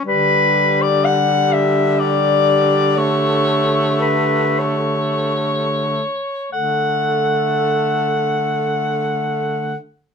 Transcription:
<<
  \new Staff \with { instrumentName = "Soprano saxophone" } { \time 6/8 \key d \major \tempo 4. = 34 b'8. d''16 fis''8 e''8 d''4 | cis''4 b'8 cis''4. | fis''2. | }
  \new Staff \with { instrumentName = "Clarinet" } { \time 6/8 \key d \major g'2.~ | g'2~ g'8 r8 | a'2. | }
  \new Staff \with { instrumentName = "Tenor saxophone" } { \time 6/8 \key d \major g2. | a2~ a8 r8 | a2. | }
  \new Staff \with { instrumentName = "Baritone saxophone" } { \clef bass \time 6/8 \key d \major d2.~ | d2~ d8 r8 | d2. | }
>>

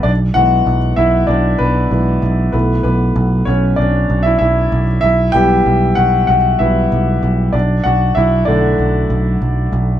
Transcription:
<<
  \new Staff \with { instrumentName = "Grand piano" } { \time 4/4 \key e \dorian \tempo 4 = 96 <d' d''>8 <fis' fis''>4 <e' e''>8 <d' d''>8 <b b'>4 r8 | b'8 <b b'>4 <cis' cis''>8 <d' d''>8. <e' e''>16 <e' e''>8. r16 | <e' e''>8 <g' g''>4 <fis' fis''>8 <fis' fis''>8 <e' e''>4 r8 | <d' d''>8 <fis' fis''>8 <e' e''>8 <d' d''>2 r8 | }
  \new Staff \with { instrumentName = "Grand piano" } { \clef bass \time 4/4 \key e \dorian r8 <e gis b>8 r2 <e gis b>8 r8 | <e a b>4. r2 r8 | r8 <e g b>4. r8 <e g b>8 r4 | r4. <d fis a>4. r4 | }
  \new Staff \with { instrumentName = "Picked electric bass" } { \clef bass \time 4/4 \key e \dorian b,,8 b,,8 b,,8 b,,8 b,,8 b,,8 b,,8 b,,8 | b,,8 b,,8 b,,8 b,,8 b,,8 b,,8 b,,8 b,,8 | b,,8 b,,8 b,,8 b,,8 b,,8 b,,8 b,,8 b,,8 | b,,8 b,,8 b,,8 b,,8 b,,8 b,,8 b,,8 b,,8 | }
>>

